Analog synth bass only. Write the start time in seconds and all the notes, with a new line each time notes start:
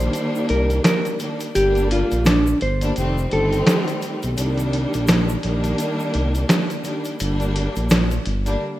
0.50 C2
1.56 G1
2.12 A#1
2.62 G1
2.98 F1
3.33 G1
4.24 B1
4.39 C2
4.95 A#1
5.45 A#1
6.15 C2
7.21 G1
7.77 A#1
8.27 G1